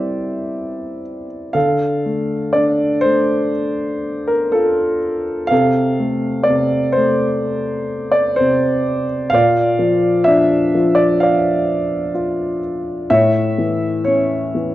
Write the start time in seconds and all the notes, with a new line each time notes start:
Already playing: C3 G3 C4 E4 G4 C5 D5 E5
1.53 D3 A4 F5
2.05 A3
2.53 D4 D5
3.01 A3 C5
4.27 A#4
4.52 F4 A4
5.47 C3 F5
5.52 A4
5.99 A3
6.43 D5
6.49 C3
6.92 C5
6.97 A3
8.12 D5
8.36 C5
8.40 C3
9.30 A#2 F5
9.35 D5
9.79 F3
10.24 D4 E5
10.75 F3
10.95 D5
11.20 D5 F5
12.15 F4
13.10 A2 C#5 E5
13.59 E3
14.04 C#4 C#5
14.55 E3